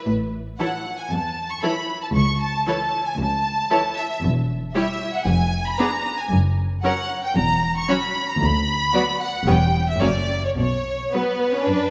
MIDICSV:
0, 0, Header, 1, 6, 480
1, 0, Start_track
1, 0, Key_signature, 3, "major"
1, 0, Tempo, 519931
1, 65, Time_signature, 4, 2, 24, 8
1, 3906, Key_signature, 2, "minor"
1, 5344, Tempo, 526316
1, 8704, Tempo, 553506
1, 10810, End_track
2, 0, Start_track
2, 0, Title_t, "Violin section"
2, 0, Program_c, 0, 48
2, 549, Note_on_c, 0, 78, 46
2, 886, Note_off_c, 0, 78, 0
2, 911, Note_on_c, 0, 80, 41
2, 1026, Note_on_c, 0, 81, 49
2, 1032, Note_off_c, 0, 80, 0
2, 1388, Note_off_c, 0, 81, 0
2, 1389, Note_on_c, 0, 85, 48
2, 1504, Note_on_c, 0, 83, 49
2, 1509, Note_off_c, 0, 85, 0
2, 1857, Note_off_c, 0, 83, 0
2, 1869, Note_on_c, 0, 81, 41
2, 1916, Note_off_c, 0, 81, 0
2, 1980, Note_on_c, 0, 85, 54
2, 2218, Note_off_c, 0, 85, 0
2, 2225, Note_on_c, 0, 81, 51
2, 2460, Note_off_c, 0, 81, 0
2, 2471, Note_on_c, 0, 81, 49
2, 2822, Note_off_c, 0, 81, 0
2, 2836, Note_on_c, 0, 80, 50
2, 2950, Note_on_c, 0, 81, 58
2, 2951, Note_off_c, 0, 80, 0
2, 3653, Note_off_c, 0, 81, 0
2, 3671, Note_on_c, 0, 76, 47
2, 3909, Note_off_c, 0, 76, 0
2, 4390, Note_on_c, 0, 76, 55
2, 4722, Note_off_c, 0, 76, 0
2, 4754, Note_on_c, 0, 78, 53
2, 4860, Note_on_c, 0, 80, 63
2, 4869, Note_off_c, 0, 78, 0
2, 5222, Note_off_c, 0, 80, 0
2, 5226, Note_on_c, 0, 83, 57
2, 5338, Note_on_c, 0, 82, 60
2, 5346, Note_off_c, 0, 83, 0
2, 5703, Note_off_c, 0, 82, 0
2, 5710, Note_on_c, 0, 80, 50
2, 5829, Note_off_c, 0, 80, 0
2, 6300, Note_on_c, 0, 78, 61
2, 6635, Note_off_c, 0, 78, 0
2, 6670, Note_on_c, 0, 79, 54
2, 6784, Note_off_c, 0, 79, 0
2, 6785, Note_on_c, 0, 82, 63
2, 7136, Note_off_c, 0, 82, 0
2, 7153, Note_on_c, 0, 85, 60
2, 7266, Note_off_c, 0, 85, 0
2, 7271, Note_on_c, 0, 83, 60
2, 7630, Note_off_c, 0, 83, 0
2, 7643, Note_on_c, 0, 82, 59
2, 7748, Note_on_c, 0, 83, 70
2, 7755, Note_off_c, 0, 82, 0
2, 8464, Note_on_c, 0, 78, 56
2, 8465, Note_off_c, 0, 83, 0
2, 8700, Note_off_c, 0, 78, 0
2, 8708, Note_on_c, 0, 79, 58
2, 9057, Note_off_c, 0, 79, 0
2, 9066, Note_on_c, 0, 76, 53
2, 9178, Note_off_c, 0, 76, 0
2, 9186, Note_on_c, 0, 74, 54
2, 9544, Note_off_c, 0, 74, 0
2, 9552, Note_on_c, 0, 73, 45
2, 9598, Note_off_c, 0, 73, 0
2, 9664, Note_on_c, 0, 73, 58
2, 10139, Note_off_c, 0, 73, 0
2, 10151, Note_on_c, 0, 71, 45
2, 10810, Note_off_c, 0, 71, 0
2, 10810, End_track
3, 0, Start_track
3, 0, Title_t, "Violin section"
3, 0, Program_c, 1, 48
3, 551, Note_on_c, 1, 69, 28
3, 552, Note_on_c, 1, 73, 30
3, 625, Note_off_c, 1, 69, 0
3, 626, Note_off_c, 1, 73, 0
3, 1498, Note_on_c, 1, 69, 32
3, 1498, Note_on_c, 1, 73, 30
3, 1572, Note_off_c, 1, 69, 0
3, 1572, Note_off_c, 1, 73, 0
3, 2461, Note_on_c, 1, 73, 33
3, 2464, Note_on_c, 1, 69, 33
3, 2535, Note_off_c, 1, 73, 0
3, 2538, Note_off_c, 1, 69, 0
3, 3420, Note_on_c, 1, 73, 36
3, 3422, Note_on_c, 1, 69, 35
3, 3494, Note_off_c, 1, 73, 0
3, 3496, Note_off_c, 1, 69, 0
3, 4390, Note_on_c, 1, 67, 35
3, 4390, Note_on_c, 1, 73, 38
3, 4464, Note_off_c, 1, 67, 0
3, 4464, Note_off_c, 1, 73, 0
3, 5346, Note_on_c, 1, 71, 35
3, 5349, Note_on_c, 1, 68, 37
3, 5419, Note_off_c, 1, 71, 0
3, 5421, Note_off_c, 1, 68, 0
3, 6309, Note_on_c, 1, 70, 36
3, 6311, Note_on_c, 1, 73, 40
3, 6382, Note_off_c, 1, 70, 0
3, 6384, Note_off_c, 1, 73, 0
3, 7262, Note_on_c, 1, 73, 37
3, 7264, Note_on_c, 1, 66, 39
3, 7335, Note_off_c, 1, 73, 0
3, 7337, Note_off_c, 1, 66, 0
3, 8219, Note_on_c, 1, 66, 38
3, 8222, Note_on_c, 1, 74, 36
3, 8292, Note_off_c, 1, 66, 0
3, 8295, Note_off_c, 1, 74, 0
3, 8702, Note_on_c, 1, 73, 35
3, 8705, Note_on_c, 1, 61, 37
3, 8771, Note_off_c, 1, 73, 0
3, 8774, Note_off_c, 1, 61, 0
3, 9167, Note_on_c, 1, 61, 37
3, 9170, Note_on_c, 1, 73, 37
3, 9236, Note_off_c, 1, 61, 0
3, 9240, Note_off_c, 1, 73, 0
3, 10139, Note_on_c, 1, 59, 44
3, 10479, Note_off_c, 1, 59, 0
3, 10503, Note_on_c, 1, 61, 42
3, 10617, Note_on_c, 1, 62, 47
3, 10625, Note_off_c, 1, 61, 0
3, 10810, Note_off_c, 1, 62, 0
3, 10810, End_track
4, 0, Start_track
4, 0, Title_t, "Viola section"
4, 0, Program_c, 2, 48
4, 545, Note_on_c, 2, 64, 31
4, 547, Note_on_c, 2, 52, 29
4, 619, Note_off_c, 2, 64, 0
4, 621, Note_off_c, 2, 52, 0
4, 1509, Note_on_c, 2, 52, 33
4, 1511, Note_on_c, 2, 64, 32
4, 1582, Note_off_c, 2, 52, 0
4, 1585, Note_off_c, 2, 64, 0
4, 2467, Note_on_c, 2, 52, 34
4, 2467, Note_on_c, 2, 64, 33
4, 2541, Note_off_c, 2, 52, 0
4, 2541, Note_off_c, 2, 64, 0
4, 3424, Note_on_c, 2, 52, 34
4, 3425, Note_on_c, 2, 64, 35
4, 3498, Note_off_c, 2, 52, 0
4, 3499, Note_off_c, 2, 64, 0
4, 4383, Note_on_c, 2, 55, 36
4, 4385, Note_on_c, 2, 64, 35
4, 4456, Note_off_c, 2, 55, 0
4, 4458, Note_off_c, 2, 64, 0
4, 5343, Note_on_c, 2, 59, 41
4, 5345, Note_on_c, 2, 62, 38
4, 5416, Note_off_c, 2, 59, 0
4, 5418, Note_off_c, 2, 62, 0
4, 6299, Note_on_c, 2, 61, 39
4, 6301, Note_on_c, 2, 54, 41
4, 6372, Note_off_c, 2, 61, 0
4, 6373, Note_off_c, 2, 54, 0
4, 7253, Note_on_c, 2, 54, 39
4, 7255, Note_on_c, 2, 61, 41
4, 7326, Note_off_c, 2, 54, 0
4, 7328, Note_off_c, 2, 61, 0
4, 8219, Note_on_c, 2, 54, 36
4, 8219, Note_on_c, 2, 59, 36
4, 8292, Note_off_c, 2, 54, 0
4, 8292, Note_off_c, 2, 59, 0
4, 8699, Note_on_c, 2, 55, 36
4, 8700, Note_on_c, 2, 59, 37
4, 8769, Note_off_c, 2, 55, 0
4, 8769, Note_off_c, 2, 59, 0
4, 9167, Note_on_c, 2, 58, 38
4, 9171, Note_on_c, 2, 54, 38
4, 9237, Note_off_c, 2, 58, 0
4, 9240, Note_off_c, 2, 54, 0
4, 10145, Note_on_c, 2, 59, 35
4, 10147, Note_on_c, 2, 54, 35
4, 10215, Note_off_c, 2, 59, 0
4, 10216, Note_off_c, 2, 54, 0
4, 10810, End_track
5, 0, Start_track
5, 0, Title_t, "Cello section"
5, 0, Program_c, 3, 48
5, 63, Note_on_c, 3, 45, 39
5, 446, Note_off_c, 3, 45, 0
5, 1033, Note_on_c, 3, 40, 41
5, 1411, Note_off_c, 3, 40, 0
5, 1981, Note_on_c, 3, 37, 44
5, 2364, Note_off_c, 3, 37, 0
5, 2946, Note_on_c, 3, 37, 46
5, 3325, Note_off_c, 3, 37, 0
5, 3904, Note_on_c, 3, 40, 48
5, 4287, Note_off_c, 3, 40, 0
5, 4864, Note_on_c, 3, 41, 53
5, 5243, Note_off_c, 3, 41, 0
5, 5821, Note_on_c, 3, 42, 53
5, 6203, Note_off_c, 3, 42, 0
5, 6779, Note_on_c, 3, 40, 52
5, 7160, Note_off_c, 3, 40, 0
5, 7740, Note_on_c, 3, 38, 54
5, 8123, Note_off_c, 3, 38, 0
5, 8706, Note_on_c, 3, 40, 50
5, 9075, Note_off_c, 3, 40, 0
5, 9174, Note_on_c, 3, 42, 50
5, 9558, Note_off_c, 3, 42, 0
5, 9660, Note_on_c, 3, 47, 46
5, 10045, Note_off_c, 3, 47, 0
5, 10626, Note_on_c, 3, 42, 46
5, 10810, Note_off_c, 3, 42, 0
5, 10810, End_track
6, 0, Start_track
6, 0, Title_t, "Double bass section"
6, 0, Program_c, 4, 48
6, 61, Note_on_c, 4, 33, 40
6, 445, Note_off_c, 4, 33, 0
6, 1987, Note_on_c, 4, 37, 42
6, 2366, Note_off_c, 4, 37, 0
6, 3904, Note_on_c, 4, 28, 49
6, 4286, Note_off_c, 4, 28, 0
6, 4865, Note_on_c, 4, 29, 53
6, 5244, Note_off_c, 4, 29, 0
6, 5821, Note_on_c, 4, 30, 50
6, 6203, Note_off_c, 4, 30, 0
6, 6782, Note_on_c, 4, 28, 56
6, 7162, Note_off_c, 4, 28, 0
6, 7744, Note_on_c, 4, 38, 51
6, 8125, Note_off_c, 4, 38, 0
6, 8707, Note_on_c, 4, 28, 52
6, 9076, Note_off_c, 4, 28, 0
6, 9174, Note_on_c, 4, 30, 47
6, 9557, Note_off_c, 4, 30, 0
6, 9659, Note_on_c, 4, 35, 48
6, 10044, Note_off_c, 4, 35, 0
6, 10810, End_track
0, 0, End_of_file